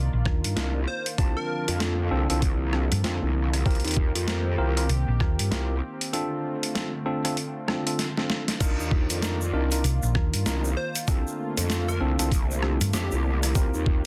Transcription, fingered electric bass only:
0.00 0.10 C2 medium
0.13 0.24 A#1 loud
0.26 0.41 D#2 medium
0.44 0.55 G2 medium
2.92 3.02 G2 medium
4.89 5.05 C2 medium
5.08 5.18 A#1 medium
5.20 5.36 D#2 loud
5.39 5.49 G2 medium
9.84 10.00 C2 medium
10.03 10.13 A#1 loud
10.34 10.44 G2 medium
12.81 12.92 G2 medium

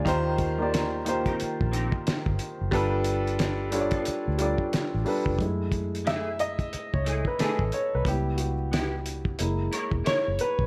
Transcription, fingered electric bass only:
0.07 1.23 D#2 loud
1.42 muted fingered electric bass stroke soft
1.62 1.89 A#1 medium
2.09 muted fingered electric bass stroke soft
2.28 2.38 G1 medium
2.61 2.71 F#1 medium
2.73 4.02 G1 loud
4.08 muted fingered electric bass stroke soft
4.28 4.55 D2 medium
4.75 muted fingered electric bass stroke soft
4.94 5.04 A1 medium
5.27 5.37 F1 medium
5.40 6.69 F#2 medium
6.74 muted fingered electric bass stroke soft
6.95 7.22 C#2 medium
7.41 muted fingered electric bass stroke soft
7.60 7.70 A1 medium
7.95 8.05 C2 medium
8.07 9.42 C#2 loud
9.40 9.68 F#1 medium
9.93 10.03 E1 medium
10.28 10.38 F#1 medium
10.60 10.67 A#1 medium

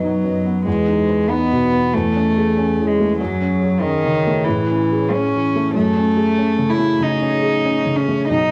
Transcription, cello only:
0.03 0.65 F#3 medium
0.66 1.31 G#3 medium
1.29 1.95 B3 medium
1.93 2.89 A3 medium
2.88 3.18 G#3 medium
3.19 3.83 F#3 medium
3.81 4.46 D#3 medium
4.45 5.14 E3 medium
5.12 5.75 C#4 medium
5.75 6.71 A3 medium
6.69 7.03 E4 medium
7.02 7.98 D#4 medium
7.96 8.28 C#4 medium
8.29 8.51 D#4 medium

